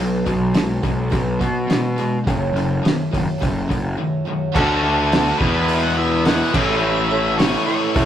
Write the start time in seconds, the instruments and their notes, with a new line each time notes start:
Already playing: picked electric bass B1, distorted electric guitar B2, twelve-string acoustic guitar B2 F#3 B3 D4 F#4
0.00 distorted electric guitar F#3
0.24 picked electric bass B1, distorted electric guitar B2 F#3, twelve-string acoustic guitar B3 D4 F#4, kick, open hi-hat
0.51 distorted electric guitar B2, twelve-string acoustic guitar F#3 B3 D4 F#4, open hi-hat
0.55 distorted electric guitar G#3, snare
0.81 picked electric bass B1, distorted electric guitar B2 G#3, twelve-string acoustic guitar B3 D4 F#4, kick, open hi-hat
1.09 picked electric bass B1, twelve-string acoustic guitar B2 F#3 B3 D4 F#4, distorted electric guitar B2 F#3, kick, open hi-hat
1.40 distorted electric guitar B2 F#3, picked electric bass B2, twelve-string acoustic guitar B3 D4 F#4, kick, open hi-hat
1.68 distorted electric guitar B2 G#3, twelve-string acoustic guitar F#3 B3 D4 F#4, snare, open hi-hat
1.98 distorted electric guitar B2 G#3, twelve-string acoustic guitar B3 D4 F#4, open hi-hat
2.24 picked electric bass F#1, distorted electric guitar F#2 C#3, kick, open hi-hat
2.28 distorted electric guitar F#2 C#3, twelve-string acoustic guitar F#2 C#3 F#3 A3 C#4 F#4
2.53 picked electric bass F#1, distorted electric guitar F#2 C#3, twelve-string acoustic guitar C#4 F#4, open hi-hat
2.58 twelve-string acoustic guitar F#3 A3
2.83 distorted electric guitar F#2 D#3, twelve-string acoustic guitar F#3 A3 C#4 F#4, snare, open hi-hat
3.11 picked electric bass F#1, distorted electric guitar F#2 D#3, twelve-string acoustic guitar F#3 A3 C#4 F#4, kick, open hi-hat
3.38 twelve-string acoustic guitar F#2 C#3 F#3 A3 C#4 F#4, distorted electric guitar F#2 C#3
3.42 picked electric bass F#1, kick, open hi-hat
3.68 picked electric bass F#1, distorted electric guitar F#2 C#3, twelve-string acoustic guitar F#3 A3 C#4 F#4, kick, open hi-hat
3.94 distorted electric guitar F#2, twelve-string acoustic guitar F#3 A3 C#4 F#4
3.98 distorted electric guitar D#3
4.25 distorted electric guitar F#2 D#3, twelve-string acoustic guitar F#3 A3 C#4 F#4
4.54 picked electric bass D2, twelve-string acoustic guitar D3 F#3 A3 D4 F#4, distorted electric guitar D3 A3 D4 F#4, tonewheel organ D4 F#4 A4 D5, reed electric piano F#4 A4 D5, lead electric guitar A4, kick, crash
4.82 twelve-string acoustic guitar A3 D4 F#4, reed electric piano F#4 A4 D5
5.11 twelve-string acoustic guitar F#3 A3 D4 F#4, reed electric piano F#4 A4 D5, snare, open hi-hat
5.38 distorted electric guitar E2 B2 E3 B3, picked electric bass E2, tonewheel organ B3 E4 G#4 B4, twelve-string acoustic guitar B3 E4 G#4, lead electric guitar B4, kick
5.42 distorted electric guitar G#3 E4, reed electric piano E4 G#4 B4
5.66 twelve-string acoustic guitar E3 B3 E4 G#4, open hi-hat
5.81 lead electric guitar F#5
5.96 twelve-string acoustic guitar B3 E4 G#4, reed electric piano E4 G#4 B4, lead electric guitar E5
6.25 distorted electric guitar E2 B2 E3 G#3 B3 E4, twelve-string acoustic guitar E3 B3 E4 G#4, reed electric piano E4 G#4 B4, lead electric guitar F#5, snare, open hi-hat
6.53 picked electric bass A1, distorted electric guitar A2 E3 A3 C#4 E4, tonewheel organ A3 C#4 E4 A4, twelve-string acoustic guitar A3 C#4 E4 A4, reed electric piano E4 A4 C#5, lead electric guitar E5, kick, crash
6.79 twelve-string acoustic guitar A2 E3 A3 C#4 E4 A4
7.10 twelve-string acoustic guitar A3 C#4 E4 A4, reed electric piano E4 A4 C#5
7.37 distorted electric guitar A2 E3 A3 C#4 E4, twelve-string acoustic guitar A3 C#4 E4 A4, reed electric piano E4 A4 C#5, lead electric guitar C#5, snare, open hi-hat
7.66 twelve-string acoustic guitar A3 C#4 E4 A4, reed electric piano E4 A4 C#5, lead electric guitar C#5
7.94 picked electric bass E2, twelve-string acoustic guitar A2 E3 A3 C#4 E4 A4, reed electric piano E4 A4 C#5, kick, open hi-hat